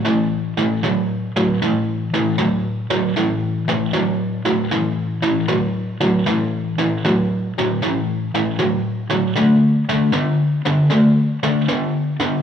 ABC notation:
X:1
M:4/4
L:1/8
Q:"Swing" 1/4=77
K:Ddor
V:1 name="Overdriven electric guitar" clef=bass
[A,,E,] [A,,E,] [A,,^F,] [A,,F,] [A,,E,] [A,,E,] [A,,F,] [A,,F,] | [A,,E,] [A,,E,] [A,,^F,] [A,,F,] [A,,E,] [A,,E,] [A,,F,] [A,,F,] | [A,,E,] [A,,E,] [A,,^F,] [A,,F,] [A,,E,] [A,,E,] [A,,F,] [A,,F,] | [D,A,] [D,A,] [D,B,] [D,B,] [D,A,] [D,A,] [D,B,] [D,B,] |]